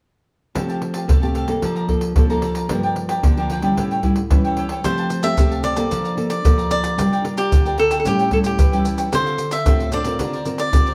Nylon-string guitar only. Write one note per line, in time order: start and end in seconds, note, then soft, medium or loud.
0.55 1.06 F3 medium
0.55 1.04 A3 medium
0.55 1.05 C4 medium
0.55 1.05 G4 medium
1.08 1.59 C3 medium
1.08 1.16 A3 soft
1.08 1.17 C4 medium
1.08 1.17 G4 medium
1.22 1.45 A3 medium
1.22 1.45 C4 medium
1.22 1.45 G4 medium
1.48 1.84 A#3 medium
1.48 1.85 D4 medium
1.48 1.85 A4 medium
1.62 2.13 F3 medium
1.88 2.11 A#3 soft
1.88 2.12 D4 medium
1.88 2.12 A4 medium
2.16 2.67 F3 medium
2.16 2.24 A#3 medium
2.16 2.25 D4 medium
2.16 2.25 A4 medium
2.29 2.66 A#3 medium
2.29 2.66 D4 medium
2.29 2.66 A4 medium
2.70 3.21 G2 medium
2.70 3.19 F3 soft
2.70 3.19 A#3 medium
2.70 3.20 D4 medium
3.23 3.74 D3 medium
3.23 3.32 F3 medium
3.23 3.33 A#3 medium
3.23 3.33 D4 medium
3.37 3.60 F3 medium
3.37 3.60 A#3 medium
3.37 3.60 D4 medium
3.62 3.99 G3 medium
3.62 3.99 C#4 medium
3.62 3.99 E4 medium
3.76 4.28 A2 medium
4.03 4.19 G3 medium
4.03 4.20 C#4 medium
4.03 4.20 E4 medium
4.30 4.82 E3 medium
4.30 4.65 G3 medium
4.30 4.65 C#4 soft
4.30 4.66 E4 medium
4.84 5.35 F3 medium
4.84 5.21 A3 medium
4.84 5.21 C4 soft
4.84 5.21 G4 medium
5.23 5.33 A3 medium
5.23 5.33 C4 medium
5.23 5.33 G4 medium
5.38 5.89 C3 medium
5.38 5.74 A3 medium
5.38 5.74 C4 medium
5.38 5.74 G4 medium
5.77 6.13 A#3 medium
5.77 6.14 D4 medium
5.77 6.14 A4 medium
5.91 6.42 F3 medium
6.17 6.40 A#3 medium
6.17 6.40 D4 soft
6.17 6.40 A4 medium
6.44 6.96 F3 medium
6.44 6.94 A#3 medium
6.44 6.94 D4 soft
6.44 6.94 A4 medium
6.97 7.49 G3 medium
6.97 7.21 D4 soft
6.97 7.21 F4 medium
6.97 7.21 A#4 medium
7.24 7.60 D4 medium
7.24 7.61 F4 medium
7.24 7.61 A#4 medium
7.51 8.03 D3 medium
7.65 8.01 D4 medium
7.65 8.01 F4 medium
7.65 8.02 A#4 medium
8.05 8.56 A2 medium
8.05 8.28 G3 medium
8.05 8.28 C#4 medium
8.05 8.28 E4 medium
8.31 8.57 G3 medium
8.31 8.57 C#4 medium
8.31 8.57 E4 medium
8.59 9.10 E3 medium
8.73 9.08 G3 medium
8.73 9.09 C#4 medium
8.73 9.09 E4 medium
9.12 9.63 D3 medium
9.12 9.47 C4 medium
9.12 9.47 F4 medium
9.12 9.47 A4 medium
9.66 10.17 A2 medium
9.66 9.89 C4 medium
9.66 9.89 F4 medium
9.66 9.89 A4 medium
9.92 10.00 C4 medium
9.92 10.01 F4 medium
9.92 10.01 A4 medium
10.05 10.42 C4 medium
10.05 10.42 F4 medium
10.05 10.42 A#4 medium
10.19 10.70 D3 medium
10.46 10.68 C4 medium
10.46 10.69 F4 medium
10.46 10.69 A#4 medium
10.73 10.94 D3 medium
10.73 10.89 C4 medium
10.73 10.89 F4 medium
10.73 10.89 A#4 medium